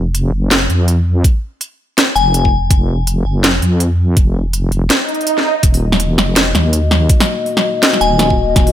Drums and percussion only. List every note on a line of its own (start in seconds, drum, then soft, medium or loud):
0.15 closed hi-hat medium
0.51 snare loud
0.51 closed hi-hat medium
0.70 closed hi-hat soft
0.88 closed hi-hat medium
1.24 kick loud
1.24 closed hi-hat medium
1.61 closed hi-hat medium
1.98 snare loud
1.98 closed hi-hat medium
2.16 closed hi-hat soft
2.34 closed hi-hat medium
2.45 kick medium
2.71 kick loud
2.71 closed hi-hat medium
3.07 closed hi-hat medium
3.44 snare loud
3.44 closed hi-hat medium
3.62 closed hi-hat soft
3.80 closed hi-hat medium
4.17 kick loud
4.17 closed hi-hat medium
4.53 closed hi-hat medium
4.72 closed hi-hat soft
4.90 snare loud
4.90 closed hi-hat medium
5.09 closed hi-hat soft
5.14 closed hi-hat soft
5.21 closed hi-hat soft
5.27 closed hi-hat medium
5.38 snare soft
5.63 kick loud
5.63 closed hi-hat medium
5.74 open hi-hat medium
5.92 snare medium
6.00 closed hi-hat medium
6.18 snare medium
6.36 snare loud
6.36 closed hi-hat medium
6.55 snare medium
6.55 closed hi-hat soft
6.73 closed hi-hat medium
6.91 snare medium
7.09 kick loud
7.09 closed hi-hat medium
7.20 snare medium
7.20 open hi-hat medium
7.46 open hi-hat soft
7.57 snare medium
7.83 snare loud
7.83 closed hi-hat medium
7.94 snare soft
8.01 closed hi-hat soft
8.19 snare medium
8.19 closed hi-hat medium
8.30 kick medium
8.56 kick loud
8.56 snare soft
8.56 closed hi-hat medium
8.67 open hi-hat medium